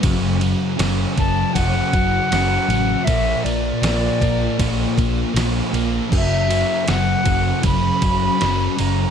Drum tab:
CC |--------|--------|x-------|
RD |xxxxxxxx|xxxxxxxx|-xxxxxxx|
SD |--o---o-|--o---o-|--o---o-|
BD |o--ooo--|o--ooo--|o--ooo--|